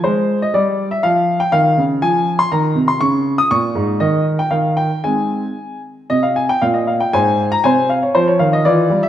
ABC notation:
X:1
M:2/4
L:1/16
Q:1/4=119
K:Dblyd
V:1 name="Grand piano"
c3 e =d3 _f | f3 g f4 | a3 c' b3 c' | d'3 e' d'4 |
e3 g f2 g2 | a6 z2 | e f a g f e f g | [ca]3 b [ca]2 f d |
c d f e [F=d]3 =e |]
V:2 name="Grand piano" clef=bass
A,4 G,4 | F,4 E,2 D,2 | F,4 E,2 C,2 | D,4 B,,2 A,,2 |
E,4 E,4 | [A,CE]4 z4 | C,4 B,,4 | A,,4 C,4 |
F,2 E,2 =E,2 G,2 |]